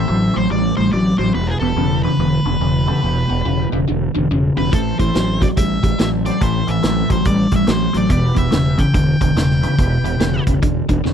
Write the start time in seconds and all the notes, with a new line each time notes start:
Already playing: C4 E4 A4 C5 E5
0.08 A1 A2 F#3
0.34 A1 A2 F#3 C5
0.50 A1 A2 G3 D5
0.77 A1 A2 G3 C5
0.92 A1 A2 F#3 D5
1.18 A1 A2 F#3 C4 E4 A4 C5 D5
1.34 E1 E2 B2 B3 E4 G4 B4
1.47 G#4
1.60 E1 E2 B2 A4
1.76 E1 E2 C#3
2.03 E2 C#3 B4
2.19 E1 E2 D3
2.45 E1 E2 D3
2.60 E1 E2 C#3
2.86 E2 C#3 B3 E4 G4 A4
3.03 E1 E2 B2 B3 E4 G4 B4
3.29 E1 E2 B2
3.45 E1 E2 C#3
3.72 E1 E2 C#3
3.88 E1 E2 D3
4.15 E1 E2 D3
4.31 E1 E2 C#3
4.55 E1 E2 C#3 B3 E4 G4 B4
4.72 A1 A2 E3 C4 E4 A4 C5, kick, closed hi-hat
4.99 A1 A2 E3 C5, kick, closed hi-hat
5.15 A1 A2 F#3, snare, closed hi-hat
5.41 A2 F#3 D5, kick, closed hi-hat
5.57 A1 A2 G3 E5, kick, closed hi-hat
5.83 A1 A2 G3, kick, closed hi-hat
5.98 A1 A2 F#3 E5, snare, closed hi-hat
6.24 A2 F#3 C4 E4 A4 C5 D5, closed hi-hat
6.41 A1 A2 E3 C4 E4 A4 B4 C5, kick, closed hi-hat
6.67 A1 A2 E3 E5, closed hi-hat
6.83 A1 A2 F#3, snare, closed hi-hat
7.09 A1 A2 F#3 C5, kick, closed hi-hat
7.25 A1 A2 G3 D5, kick, closed hi-hat
7.51 A1 A2 G3, kick, closed hi-hat
7.56 E5
7.67 A1 A2 F#3 C5, snare, closed hi-hat
7.93 A1 A2 F#3 C4 E4 A4 C5 D5, closed hi-hat
8.09 E1 E2 B2 B3 E4 G4 B4 D5, kick, closed hi-hat
8.35 E1 E2 B2 E5, kick, closed hi-hat
8.51 E1 E2 C#3, snare, closed hi-hat
8.78 E2 C#3 G5, kick, closed hi-hat
8.94 E1 E2 D3, kick, closed hi-hat
9.21 E1 E2 D3, kick, closed hi-hat
9.35 E1 E2 C#3, snare, closed hi-hat
9.51 snare
9.61 E2 C#3 B3 E4 G4 B4, closed hi-hat
9.78 E1 E2 B2 B3 E4 G4 B4, kick, closed hi-hat
10.03 E1 E2 B2, closed hi-hat
10.20 E1 E2 C#3, snare, closed hi-hat
10.47 E1 E2 C#3, kick, closed hi-hat
10.62 E1 E2 D3, kick, closed hi-hat
10.89 E1 E2 D3, kick, closed hi-hat
11.04 E1 E2 C#3, snare